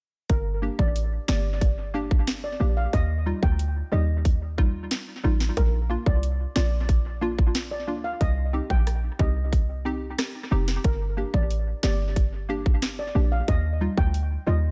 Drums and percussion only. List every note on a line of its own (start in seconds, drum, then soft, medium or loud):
0.30 kick loud
0.30 closed hi-hat medium
0.79 kick loud
0.96 closed hi-hat medium
1.28 snare loud
1.61 kick loud
1.61 closed hi-hat medium
2.11 kick loud
2.27 snare loud
2.27 closed hi-hat medium
2.93 kick loud
2.93 closed hi-hat medium
3.43 kick loud
3.59 closed hi-hat medium
4.25 kick loud
4.25 closed hi-hat medium
4.58 kick medium
4.91 snare loud
4.91 closed hi-hat medium
5.40 snare medium
5.57 kick loud
5.57 closed hi-hat medium
6.06 kick loud
6.23 closed hi-hat medium
6.56 snare loud
6.89 kick loud
6.89 closed hi-hat medium
7.39 kick loud
7.55 snare loud
7.55 closed hi-hat medium
8.21 kick loud
8.21 closed hi-hat medium
8.70 kick loud
8.87 cross-stick medium
8.87 closed hi-hat medium
9.19 kick loud
9.53 kick loud
9.53 closed hi-hat medium
10.18 cross-stick loud
10.18 snare loud
10.18 closed hi-hat medium
10.68 snare medium
10.84 kick loud
10.84 closed hi-hat medium
11.34 kick loud
11.51 closed hi-hat medium
11.83 snare loud
12.16 kick loud
12.16 closed hi-hat medium
12.66 kick loud
12.82 snare loud
12.82 closed hi-hat medium
13.48 kick loud
13.48 closed hi-hat medium
13.97 kick loud
14.14 closed hi-hat medium